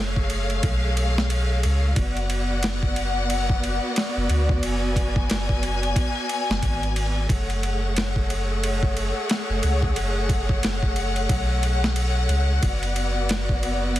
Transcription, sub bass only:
Already playing: F#1
0.64 B1
1.64 C#2
1.97 F#1
4.17 F#1
4.29 D2
4.63 F#1
6.50 F#1
6.63 G#1
7.30 F#1
9.49 F#1
9.63 C#2
9.96 F#1
11.30 B1
12.29 C#2
12.63 F#1

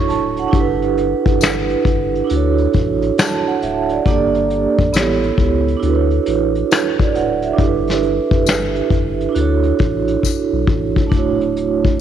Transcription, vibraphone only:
Already playing: D4 E4 F#4 A4 C#5 C#6
0.09 A5
0.39 F#5
0.48 D4 E4
0.54 G4 A4
0.60 B4
2.24 D4 E4
2.30 F#4 A4
2.36 C#5
3.19 A5
3.48 F#5
3.63 E5
3.91 D5
4.05 A#3 D4 G4
4.10 A4 D5
4.93 B3 E4 G4
4.97 A4 C#5
5.77 D4 E4
5.83 F#4 A4
5.89 B4
5.95 C#5
7.00 D5
7.15 F#5
7.44 E5
7.53 D4 E4
7.59 G4 A4
7.65 B4
9.29 D4 E4
9.35 F#4 A4
9.41 C#5
11.07 A3 D4
11.13 E4 F#4
11.18 C#5

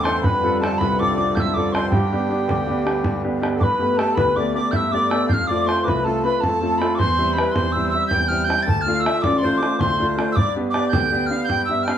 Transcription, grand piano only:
Already playing: E2 A2
0.04 C4 E4 A4
0.24 F2
0.43 C4 F4 A4
0.61 C4 F4 A4
0.80 C2
0.99 C4 F4 A4
1.17 C4 F4 A4
1.36 F2
1.56 C4 F4 A4
1.74 C4 F4 A4
1.91 G2
2.12 B3 D4 G4
2.29 B3 D4 G4
2.48 D2
2.67 B3 D4 G4
2.85 B3 D4 G4
3.04 G2
3.24 B3 D4 G4
3.41 B3 D4 G4
3.60 G2
3.79 A3 B3 G4
3.98 A3 B3 G4
4.17 D2
4.37 A3 B3 G4
4.55 A3 B3 G4
4.72 G2
4.93 A3 B3 G4
5.11 A3 B3 G4
5.31 F2
5.50 A3 C4 F4
5.67 A3 C4 F4
5.85 C2
6.05 A3 C4 F4
6.25 A3 C4 F4
6.42 F2
6.61 A3 C4 F4
6.80 A3 C4 F4
6.99 E2
7.18 G3 C4 E4
7.36 G3 C4 E4
7.55 E2
7.75 G3 C4 E4
7.92 G3 C4 E4
8.11 E2
8.30 G3 C4 E4
8.48 G3 C4 E4
8.67 D2
8.86 A3 D4 F4
9.05 A3 D4 F4
9.23 A1
9.43 A3 D4 F4
9.60 A3 D4 F4
9.79 D2
10.00 A3 D4 F4
10.17 A3 D4 F4
10.36 G2
10.56 B3 D4 G4
10.74 B3 D4 G4
10.93 D2
11.12 B3 D4 G4
11.30 B3 D4 G4
11.49 G2
11.69 B3 D4 G4
11.87 B3 D4 G4

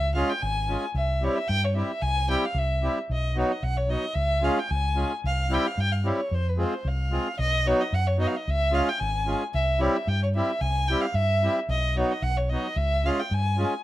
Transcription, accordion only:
0.15 G#3 C#4 F4 G#4
0.68 G#3 C#4 F4 G#4
1.21 G3 C4 E4 G4
1.74 G3 C4 E4 G4
2.28 G3 C4 E4 G4
2.82 G3 C4 E4 G4
3.34 F#3 B3 D#4 F#4
3.89 F#3 B3 D#4 F#4
4.41 G#3 C#4 F4 G#4
4.96 G#3 C#4 F4 G#4
5.49 G3 C4 E4 G4
6.03 G3 C4 E4 G4
6.57 G#3 C4 F4 G#4
7.10 G#3 C4 F4 G#4
7.66 F#3 B3 D#4 F#4
8.17 F#3 B3 D#4 F#4
8.71 G#3 C#4 F4 G#4
9.26 G#3 C#4 F4 G#4
9.79 G3 C4 E4 G4
10.35 G3 C4 E4 G4
10.89 G3 C4 E4 G4
11.43 G3 C4 E4 G4
11.95 F#3 B3 D#4 F#4
12.51 F#3 B3 D#4 F#4
13.04 G#3 C#4 F4 G#4
13.58 G#3 C#4 F4 G#4

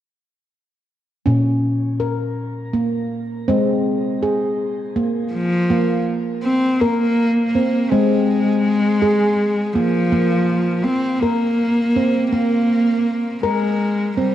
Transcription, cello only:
5.33 F3
6.44 C4
6.80 A#3
7.90 G#3
9.74 F3
10.84 C4
11.15 C4
11.20 A#3
12.32 A#3
13.45 G#3
14.18 G3

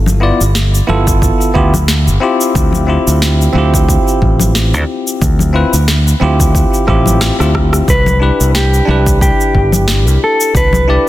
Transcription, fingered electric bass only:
Already playing: G1
0.41 G1
0.89 G1
1.56 D2
2.07 G1
2.56 D2
3.07 D2
3.55 D2
4.22 A1
4.74 D2
5.22 D2
5.73 D2
6.22 D2
6.88 A1
7.40 D2
7.88 C2
8.40 C2
8.89 C2
9.55 G1
10.07 C2
10.55 C2

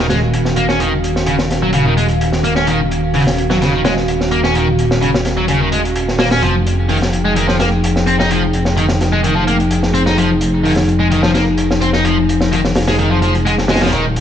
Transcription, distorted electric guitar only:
0.10 G#3
0.57 A#3
0.69 C#4
0.80 D#3
1.27 C#3
1.63 F#3
1.74 C#3
1.86 D#3
1.97 G#3
2.44 A#3
2.56 C#4
2.67 D#3
3.14 C#3
3.50 F#3
3.61 C#3
3.73 D#3
3.85 G#3
4.32 A#3
4.44 C#4
4.55 D#3
5.02 C#3
5.37 F#3
5.49 C#3
5.61 D#3
5.72 G#3
6.19 A#3
6.31 C#4
6.42 F3
6.89 D#3
7.25 G#3
7.36 D#3
7.48 F3
7.60 A#3
8.07 C4
8.19 D#4
8.30 F3
8.77 D#3
9.12 G#3
9.23 D#3
9.36 F3
9.47 A#3
9.94 C4
10.06 D#4
10.17 F3
10.64 D#3
11.00 G#3
11.11 D#3
11.24 F3
11.35 A#3
11.81 C4
11.94 D#4
12.05 F3
12.52 D#3
12.88 G#3
12.99 D#3
13.11 F3
13.22 F3
13.45 G#3
13.69 G#3
13.81 F3
13.92 D#3

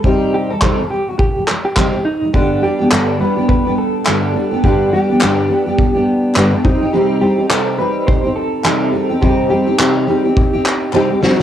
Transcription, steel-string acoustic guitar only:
0.03 C3 G3 C4 D#4 G4
0.49 C3 G3
0.61 C3 G3 C4 D#4 G4
0.78 C3 G3
0.90 C3 G3
1.07 C3 G3
1.36 C3 G3
1.47 C3 G3
1.76 C3 G3 C4 D#4 G4
1.93 C3 G3
2.21 C3 G3
2.33 G2 D3 G3 B3 D4 G4
2.62 G3 B3 D4 G4
2.79 G3 B3 D4 G4
2.91 G2 D3 G3 B3 D4 G4
3.19 G3 B3 D4 G4
3.36 G3 B3 D4 G4
3.65 G3 B3 D4 G4
4.06 G2 D3 G3 B3 D4 G4
4.34 G3 B3 D4 G4
4.51 G3 B3 D4 G4
4.63 G2 D3 G3 B3 D4 G4
4.92 G3 B3 D4 G4
5.09 G3 B3 D4 G4
5.21 G2 D3 G3 B3 D4 G4
5.49 G3 B3 D4 G4
5.66 G3 B3 D4 G4
5.94 G3 B3 D4 G4
6.35 G2 D3 G3 B3 D4 G4
6.52 G3 B3 D4 G4
6.64 G3 C4 D#4 G4
6.81 C4 D#4 G4
6.93 C3 G3 C4 D#4 G4
7.21 G3 C4 D#4 G4
7.38 C4 D#4 G4
7.49 C3 G3 C4 D#4 G4
7.78 G3 C4 D#4 G4
8.23 C4 D#4 G4
8.64 C3 G3 C4 D#4 G4
8.92 G3 C4 D#4 G4
9.09 C4 D#4 G4
9.21 C3 G3 C4 D#4 G4
9.49 G3 C4 D#4 G4
9.66 C4 D#4 G4
9.78 C3 G3 C4 D#4 G4
10.07 G3 C4 D#4 G4
10.24 C4 D#4 G4
10.53 C4 D#4 G4
10.92 C3 G3 C4 D#4 G4
11.09 C4 D#4 G4
11.21 G3 C4 D#4 G4
11.38 G4

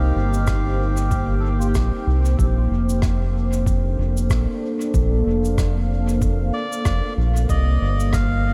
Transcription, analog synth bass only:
Already playing: C2
0.16 G1
1.75 A#1
2.07 C2
2.39 A#1
2.71 F1
3.98 F1
4.30 A#1
4.94 A#1
5.26 F1
6.86 F1
7.17 A#1
7.49 C2
7.81 G1

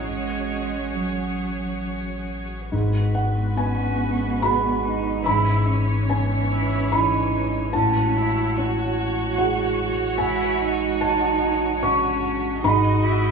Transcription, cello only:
0.04 G#3
0.94 F#3
3.57 C#4
4.42 B3
4.84 D#4
5.24 E4
5.65 C#4
6.09 B3
6.51 E4
6.92 D#4
7.74 C#4
8.16 E4
8.59 F#4
10.20 E4
10.61 D#4
11.83 C#4
12.63 D#4
13.03 E4

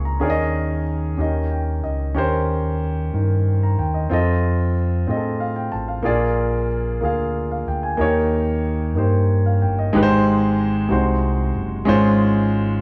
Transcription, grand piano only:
Already playing: A#2 C#4 G#4 A#4 F5 C6 C#6
0.05 A#5
0.20 D#3 C#4 G#4 A#4 D5
0.30 D#5
1.17 D#3 C#4 G4 A#4 D#5
1.52 G5
1.84 D#5
2.15 C#4 G4 A#4 C5
3.14 D#3
3.63 A#5
3.79 G5
3.94 D#5
4.10 C4 F4 A4 D#5
5.07 C4 F4 G#4 D#5
5.16 A4
5.40 F5
5.56 G5
5.72 A5
5.88 F5
6.03 A#2 A#3 F4 G#4 D5
7.01 A#3 F4 G#4 F5
7.51 F5
7.68 G5
7.83 G#5
7.97 D#3 A#3 D#4 G4 C#5
8.95 A#3 D#4 G4 C5
9.46 F5
9.62 G5
9.79 D#5
9.93 G#2 G#3 D#4 G4 B4
10.03 C5
10.89 C3 G#3 D#4 F#4 C5
11.85 G#2 G#3 C#4 F4 C5

